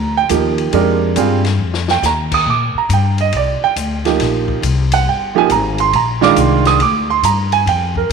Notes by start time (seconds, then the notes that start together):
Already playing: D2 A#5
0.17 G5
0.29 D#2 F3 A#3 D#4 G4, hi-hat pedal, ride
0.58 ride
0.73 F2 G#3 D4 G4 A#4, ride
1.16 G2 G3 C4 F4 G#4, hi-hat pedal, ride
1.44 snare, ride
1.59 F2
1.74 snare
1.88 G5, snare
2.02 D#2 A#5, snare, hi-hat pedal
2.32 D#6, kick, crash
2.46 A#2 D6
2.75 A#5, muted upright bass stroke
2.89 G2, hi-hat pedal, ride
2.94 G5
3.18 D#5, ride
3.32 C2, ride
3.37 D5
3.62 G5, muted upright bass stroke
3.76 D2, hi-hat pedal, ride
4.05 F3 A#3 D#4 G4, snare, ride
4.19 A#1, snare, ride
4.48 kick
4.62 C2, hi-hat pedal, ride
4.92 F#5, ride
5.05 G1 G5
5.35 F3 A#3 D#4 G4 G#5
5.50 G#1 A#5, hi-hat pedal, ride
5.78 C6, ride
5.92 A#1 A#5, ride
6.21 D#3 G#3 D4 F4 D6, snare
6.36 C2 C6, hi-hat pedal, ride
6.65 D#6, snare, ride
6.79 D2 D6, ride
7.10 C6
7.23 G2 A#5, hi-hat pedal, ride
7.52 G#5, ride
7.66 F2 G5, ride
7.95 A#4, kick